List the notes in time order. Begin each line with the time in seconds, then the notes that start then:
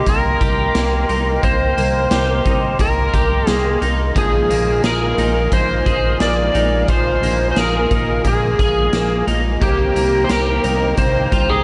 Already playing: D#4 G4 A#4 D#5 G5 C6
0.06 C2 A#3 A#4, kick, closed hi-hat
0.41 C2 G4, kick, closed hi-hat
0.75 C2 A#3, snare, closed hi-hat
1.09 C2 D#4, closed hi-hat
1.43 C2 A#3 C5, kick, closed hi-hat
1.77 C2 A#3, closed hi-hat
2.11 C2 G4, snare, closed hi-hat
2.45 C2 D#4, kick, closed hi-hat
2.79 C2 A#3 A#4, kick, closed hi-hat
3.14 C2 G4, kick, closed hi-hat
3.47 C2 A#3 G#4, snare, closed hi-hat
3.82 C2 D#4, closed hi-hat
4.15 A#1 A#2 F3 G#3 D#4 F4 G#4 A#4 F5 G#5, kick, closed hi-hat
4.49 A#1 A#3, closed hi-hat
4.83 A#1 F3 G#3 D#4 G#4 A#4, snare, closed hi-hat
4.88 F4
5.18 A#1 D#4, closed hi-hat
5.49 A#1 F3 A#3, kick, closed hi-hat
5.53 G#3 C5
5.57 D#4 F4
5.86 A#1 G#4, kick, closed hi-hat
6.20 A#1 A#3 D5, snare, closed hi-hat
6.55 A#1 D#4, closed hi-hat
6.87 A#1 A#2 F3 G#3 D#4 F4 C5, kick, closed hi-hat
7.22 A#1 A#3, closed hi-hat
7.51 F3 C5
7.56 A#1 G#3 D#4 F4 G#4 A#4, snare, closed hi-hat
7.91 A#1 D#4, kick, closed hi-hat
8.22 A#1 F3 A#3, kick, closed hi-hat
8.26 G#3 D#4 G#4
8.34 F4
8.59 A#1 G#4, kick, closed hi-hat
8.93 A#1 A#3, snare, closed hi-hat
9.27 A#1 D#4, closed hi-hat
9.60 C2 C3 D#3 A#3 C4 G4 C5 G5 A#5, kick, closed hi-hat
9.64 G4
9.96 C2 A#3, closed hi-hat
10.24 D#3 C5
10.29 C2 A#3 C4 G4 A#4, snare, closed hi-hat
10.34 G4
10.64 C2 D#4, closed hi-hat
10.94 C2 D#3, kick, closed hi-hat
10.98 A#3 C5
11.03 C4 G4
11.32 C2 F4, kick, closed hi-hat
11.49 G4 G#4